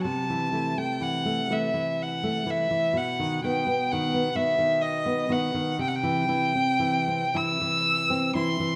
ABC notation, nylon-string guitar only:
X:1
M:3/4
L:1/16
Q:1/4=62
K:Clyd
V:1 name="Nylon-string guitar" clef=bass
C, E, [E,A,] A, E, A, [E,A,] E,2 A, [E,A,] E, | B,, ^D, [D,B,] B, D, B, [D,B,] D,2 B, [D,B,] D, | C, E, [E,E] C E, C [E,E] E,2 C [E,E] E, |]